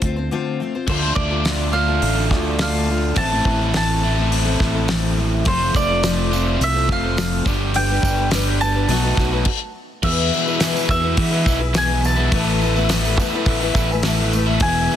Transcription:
Already playing: A4
0.02 D2 A3 C4 F4 C5, kick, closed hi-hat
0.16 C4 F4 C5
0.31 D3 A3 C4 F4 C5
0.60 A3 C4 F4 C5
0.75 C4 F4 C5
0.87 D2 D3 A3 D4 F4 A4 C5, kick, crash
1.03 D4 F4 A4
1.15 D2 D5, kick
1.31 D4 F4 A4
1.44 D3 A3 D4 F4 A4, snare, open hi-hat
1.73 D3 A3 D4 F4 A4 F5
1.88 D4 F4 A4
2.02 A1, open hi-hat
2.16 D4 F4 A4
2.31 D2 A3 D4 F4 A4, kick, snare
2.59 D3 A3 D4 F4 A4 F5, snare, open hi-hat
2.89 A3 D4 F4 A4
3.16 A1 A2 E3 A3 C4 E4 A4 A5, kick, open hi-hat
3.31 A3 C4 E4 A4
3.45 A1, kick
3.61 A3 C4 E4 A4
3.74 A2 E3 A3 C4 E4 A4 A5, snare, open hi-hat
4.04 A2 E3 A3 C4 E4 A4
4.17 A3 C4 E4 A4
4.32 open hi-hat
4.45 A3 C4 E4 A4
4.60 A1 A3 C4 E4 A4, kick, snare
4.75 A3 C4 E4 A4
4.88 A2 E3 A3 C4 E4 A4, snare, open hi-hat
5.17 A3 C4 E4 A4
5.45 F1 F2 C3 F3 A3 C4 F4 A4 C5, kick, open hi-hat, tambourine
5.61 C4 F4 A4
5.74 F1 D5, kick, tambourine
5.89 C4 F4 A4
6.03 F3 A3 C4 F4 A4, snare, open hi-hat, tambourine
6.31 C3 F3 A3 C4 F4 A4, tambourine
6.35 F2
6.61 C2 E5, open hi-hat, tambourine
6.74 C4 F4 A4
6.88 F1 A3 C4 F4 A4 F5, kick
7.03 C4 F4 A4
7.17 F3 A3 C4 F4 A4, snare, open hi-hat, tambourine
7.45 G1 G2 D3 G3 B3 D4 G4 B4, kick, tambourine
7.74 G3 D4 G4 B4 G5, open hi-hat
7.90 D4 G4 B4
8.03 G1, kick, tambourine
8.18 D4 G4 B4
8.31 G2 D3 G3 D4 G4 B4, snare, open hi-hat, tambourine
8.35 B3
8.61 G3 D4 G4 B4 A5, tambourine
8.74 D4 G4 B4
8.88 B1 B2 F#3 A3 D#4 F#4 B4, open hi-hat, tambourine
9.04 A3 D#4 F#4 B4
9.17 B1 A3 D#4 F#4 B4, kick, snare, tambourine
9.32 A3 D#4 F#4 B4
9.45 kick, crash
10.02 E2 B2 E3 G#3 B3 E4 G#4 B4 E5 B5 E6, kick, crash, tambourine
10.32 B3 E4 G#4 B4, tambourine
10.46 G#3 B3 E4 G#4 B4, tambourine
10.50 E3
10.60 E2 B2 E3 G#3 B3 E4 G#4 B4, snare, open hi-hat, tambourine
10.75 E4 G#4 B4, tambourine
10.89 E2 E3 G#3 B3 E4 E5, kick, tambourine
11.03 E3 G#3 B3 E4 G#4 B4
11.17 E3, kick, open hi-hat
11.31 E3 G#3 B3 E4 G#4 B4
11.44 B1 E3 G#3 B3, kick, tambourine
11.48 E4
11.59 E4 G#4 B4, muted overdriven electric guitar stroke
11.73 E2 B2 E3 G#3 B3 E4 G#4 B4, snare, open hi-hat, tambourine
11.77 G#5
11.90 E4 G#4 B4
12.03 B3 E4 G#4 B4 A5, muted overdriven electric guitar stroke, tambourine
12.17 E3 G#3 B3 E4
12.31 A1 A2 E3 A3 B3 E4 A4 B4 E5, kick, open hi-hat, tambourine
12.61 A3 E4 A4 B4, tambourine
12.75 A3 B3 E4 A4 B4, tambourine
12.89 A2 E3 A3 B3 E4 A4 B4, snare, open hi-hat, tambourine
13.05 A3 E4 A4 B4, tambourine
13.18 E2 E3 A3 B3 E4 B4, kick, tambourine
13.22 A4
13.34 A3 B3 E4 A4 B4
13.46 A1, kick, open hi-hat
13.62 A3 B3 E4 A4 B4
13.74 A1 E3 A3 B3 E4 E5, kick, tambourine
13.90 A3 E4 A4 B4 G#5, muted overdriven electric guitar stroke, tambourine
14.03 A2 E3 A3 B3 E4 A4 B4 A5, snare, open hi-hat, tambourine
14.21 A3 E4 A4 B4
14.33 A3 E4 A4 B4, muted overdriven electric guitar stroke, tambourine
14.47 A3 B3 E4
14.60 E2 B2 E3 G#3 E4 G#4 B4 E5 G#5 E6, kick, open hi-hat, tambourine
14.64 B3 E4 G#4 B4
14.91 B3 E4 G#4, tambourine

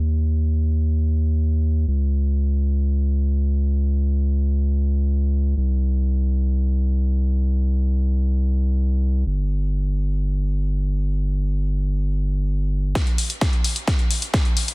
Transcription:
Already playing: D#2
1.88 C#2
5.57 C2
9.26 G1
12.95 kick, snare, closed hi-hat
13.07 closed hi-hat
13.18 open hi-hat
13.30 closed hi-hat
13.41 kick, snare, closed hi-hat
13.53 closed hi-hat
13.64 open hi-hat
13.76 closed hi-hat
13.87 kick, snare, closed hi-hat
13.99 closed hi-hat
14.11 open hi-hat
14.22 closed hi-hat
14.34 kick, snare, closed hi-hat
14.45 closed hi-hat
14.57 open hi-hat
14.68 closed hi-hat

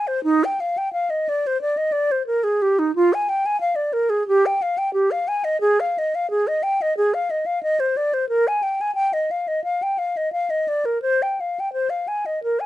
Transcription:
0.07 C5
0.24 D#4
0.44 G5
0.60 F5
0.78 G5
0.93 F5
1.10 D#5
1.29 D5
1.47 C5
1.61 D5
1.77 D#5
1.92 D5
2.12 C5
2.27 A#4
2.44 G#4
2.62 G4
2.79 D#4
2.95 F4
3.14 G#5
3.29 G5
3.46 G#5
3.61 F5
3.76 D5
3.93 A#4
4.10 G#4
4.28 G4
4.46 G5
4.62 F5
4.78 G5
4.94 G4
5.11 F5
5.28 G#5
5.44 D#5
5.61 G#4
5.80 F5
5.98 D#5
6.15 F5
6.30 G#4
6.48 D#5
6.63 G5
6.82 D#5
6.97 G#4
7.14 F5
7.30 D#5
7.46 F5
7.63 D#5
7.80 C5
7.97 D5
8.14 C5
8.29 A#4
8.48 G#5
8.63 G5
8.81 G#5
8.95 G5
9.13 D#5
9.31 F5
9.48 D#5
9.64 F5
9.83 G5
9.98 F5
10.17 D#5
10.33 F5
10.50 D#5
10.68 D5
10.85 A#4
11.02 C5
11.22 G5
11.40 F5
11.60 G5
11.73 C5
11.90 F5
12.08 G#5
12.26 D#5
12.44 A#4
12.60 G#5

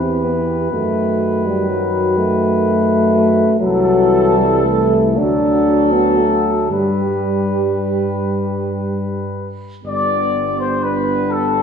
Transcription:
Already playing: E2 E3 G4 B4
0.00 C4
0.24 B3
0.72 F#2 D#3 A3 F#4
1.46 G3
1.69 F#3
2.18 A3
3.60 C2 E3 F#3 A4
4.37 G3
4.64 A3
5.16 D2 F#3 D4 F#4 A4
5.92 B3
6.17 A3
6.70 G2 G3 G4 B4
9.83 G1 G3 B3 D4 D5
10.58 C5
10.81 B4
11.29 A4

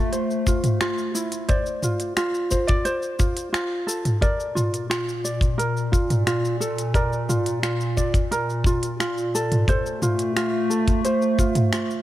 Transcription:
Already playing: A3 F4 A4 C5
0.12 C5, closed hi-hat, cabasa
0.30 cabasa
0.47 F4, kick, cabasa
0.64 closed hi-hat, mid tom, cabasa
0.81 F4, finger snap, closed hi-hat, cabasa
0.98 cabasa
1.15 E4, cabasa
1.32 closed hi-hat, cabasa
1.49 C5 D5, kick, closed hi-hat, cabasa
1.66 cabasa
1.83 F4, mid tom, cabasa
2.00 closed hi-hat, cabasa
2.17 F4, finger snap, closed hi-hat, cabasa
2.34 cabasa
2.51 C5, kick, cabasa
2.67 D5, kick, closed hi-hat, cabasa
2.85 C5, closed hi-hat, cabasa
3.02 cabasa
3.19 F4, kick, cabasa
3.37 closed hi-hat, cabasa
3.53 F4, finger snap, closed hi-hat, cabasa
3.87 A4, cabasa
4.05 closed hi-hat, mid tom, cabasa
4.21 A#2 A#4 D5, kick, closed hi-hat, cabasa
4.40 cabasa
4.55 F4, mid tom, cabasa
4.74 closed hi-hat, cabasa
4.90 F4, finger snap, closed hi-hat, cabasa
5.09 cabasa
5.25 D5, cabasa
5.41 kick, closed hi-hat, cabasa
5.58 A#4, closed hi-hat, cabasa
5.77 cabasa
5.92 F4, kick, cabasa
6.10 closed hi-hat, mid tom, cabasa
6.27 F4, finger snap, closed hi-hat, cabasa
6.45 cabasa
6.60 A4, cabasa
6.78 closed hi-hat, cabasa
6.94 A#4 D5, kick, closed hi-hat, cabasa
7.13 cabasa
7.29 F4, mid tom, cabasa
7.46 closed hi-hat, cabasa
7.63 F4, finger snap, closed hi-hat, cabasa
7.81 cabasa
7.97 D5, kick, cabasa
8.14 kick, closed hi-hat, cabasa
8.31 A#4, closed hi-hat, cabasa
8.50 cabasa
8.64 F4, kick, cabasa
8.83 closed hi-hat, cabasa
9.00 F4, finger snap, closed hi-hat, cabasa
9.18 cabasa
9.35 A4, cabasa
9.52 closed hi-hat, mid tom, cabasa
9.68 A3 A4 C5, kick, closed hi-hat, cabasa
9.86 cabasa
10.02 F4, mid tom, cabasa
10.19 closed hi-hat, cabasa
10.36 F4, finger snap, closed hi-hat, cabasa
10.70 A4, cabasa
10.88 kick, closed hi-hat, cabasa
11.05 C5, closed hi-hat, cabasa
11.22 cabasa
11.39 F4, kick, cabasa
11.55 closed hi-hat, mid tom, cabasa
11.73 F4, finger snap, closed hi-hat, cabasa
11.90 cabasa

